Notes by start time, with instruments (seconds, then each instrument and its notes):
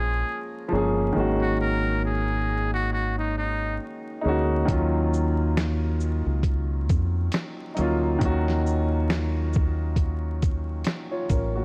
Already playing: fingered electric bass A#1, muted trumpet G#4
0.68 upright piano F3 G#3 A#3
0.73 fingered electric bass G1, upright piano C#4 G#4
1.13 upright piano D#3 G#3 A#3
1.17 fingered electric bass G#1, upright piano C#4 F#4
1.42 muted trumpet F#4
1.61 muted trumpet A#4
2.05 muted trumpet G#4
2.74 muted trumpet F#4
2.93 muted trumpet F#4
3.19 muted trumpet D#4
3.38 muted trumpet D#4
4.21 upright piano G#3 A#3 D#4
4.25 fingered electric bass D2, upright piano C#4 F#4
4.65 fingered electric bass D#2, upright piano D#3 F#3 A#3, kick, closed hi-hat
4.70 upright piano C#4 F4
5.14 shaker
5.57 finger snap, snare, closed hi-hat
6.00 shaker
6.26 fingered electric bass C#2
6.43 kick, closed hi-hat
6.89 fingered electric bass F2, kick, closed hi-hat, shaker
7.32 finger snap, snare, closed hi-hat
7.74 upright piano F#3 A#3 D#4, closed hi-hat, shaker
7.79 fingered electric bass D2, upright piano C#4 F4
8.19 fingered electric bass D#2, upright piano D#3 F#3 A#3, kick, closed hi-hat
8.24 upright piano C#4 F#4
8.48 snare
8.66 shaker
9.10 finger snap, snare, closed hi-hat
9.53 kick, shaker
9.96 kick, closed hi-hat
10.42 kick, closed hi-hat, shaker
10.84 finger snap, snare, closed hi-hat
11.11 upright piano F4 C#5
11.29 fingered electric bass A1, upright piano C#4 A#4, kick, closed hi-hat, shaker
11.55 upright piano A#3 F#4